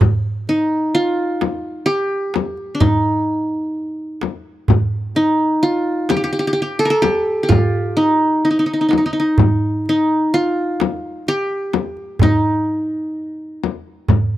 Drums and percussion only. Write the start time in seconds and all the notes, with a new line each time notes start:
0.01 darbuka dum, frame drum
0.47 darbuka ka
1.41 darbuka tek, frame drum
1.88 darbuka ka
2.34 darbuka tek, frame drum
2.57 darbuka ka
2.81 darbuka dum, frame drum
4.21 darbuka tek, frame drum
4.68 darbuka dum, frame drum
5.15 darbuka ka
6.09 darbuka tek, frame drum
6.56 darbuka ka
7.03 darbuka tek, frame drum
7.26 darbuka ka
7.50 darbuka dum, frame drum
8.91 darbuka tek, frame drum
9.38 darbuka dum, frame drum
9.86 darbuka ka
10.80 darbuka tek, frame drum
11.27 darbuka ka
11.73 darbuka tek, frame drum
11.97 darbuka ka
12.19 darbuka dum, frame drum
13.64 frame drum
14.09 darbuka dum, frame drum